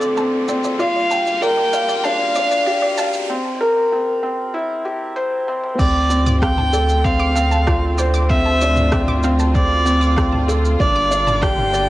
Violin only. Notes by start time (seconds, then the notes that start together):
Already playing: D5
0.79 F5
1.42 G5
2.04 F5
5.79 D5
6.41 G5
7.04 F5
8.30 E5
9.54 D5
10.80 D5
11.42 G5